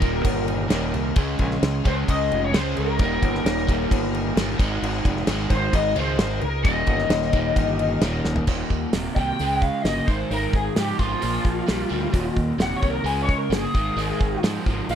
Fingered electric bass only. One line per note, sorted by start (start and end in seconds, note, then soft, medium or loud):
0.00 0.21 D#1 medium
0.25 0.68 G1 medium
0.71 0.92 D#1 medium
0.94 1.15 C2 medium
1.16 1.38 C#2 medium
1.39 1.61 A#1 medium
1.62 1.84 C#2 medium
1.85 2.07 C#2 medium
2.08 2.29 C#2 medium
2.32 2.53 F1 medium
2.55 2.76 C#2 medium
2.78 2.99 C#2 medium
2.99 3.21 D#1 medium
3.22 3.44 G1 medium
3.45 3.88 D#1 medium
3.91 4.34 G1 medium
4.36 4.58 G1 medium
4.59 4.81 G#1 medium
4.82 5.04 G#1 loud
5.05 5.26 F1 medium
5.27 5.49 G#1 medium
5.50 5.72 G#1 medium
5.73 5.95 G#1 loud
5.95 6.17 C#2 medium
6.19 6.41 G#1 medium
6.41 6.63 C#2 medium
6.65 6.86 D#1 medium
6.87 7.09 G1 medium
7.09 7.53 D#1 loud
7.56 7.99 G1 medium
8.01 8.23 D#1 medium
8.25 8.46 D#1 medium
8.47 8.62 D#1 medium
8.70 8.85 D#2 medium
8.93 9.08 D#1 medium
9.16 9.31 C2 medium
9.40 9.69 C#2 medium
9.84 9.99 G1 medium
10.07 10.22 G#1 medium
10.30 10.45 G#1 medium
10.53 10.68 G#1 medium
10.77 10.92 G#2 medium
10.98 11.13 G#1 medium
11.23 11.37 A#1 medium
11.45 11.60 A#1 medium
11.69 11.83 A#1 medium
11.91 12.06 D2 medium
12.13 12.28 D#1 medium
12.36 12.51 D#2 medium
12.58 12.73 D#1 medium
12.83 12.97 C2 medium
13.04 13.33 C#2 medium
13.50 13.65 G1 medium
13.74 13.89 G#1 medium
13.96 14.11 G#1 medium
14.20 14.35 G#1 medium
14.43 14.58 G#2 medium
14.66 14.80 G#1 medium
14.88 14.95 A#1 medium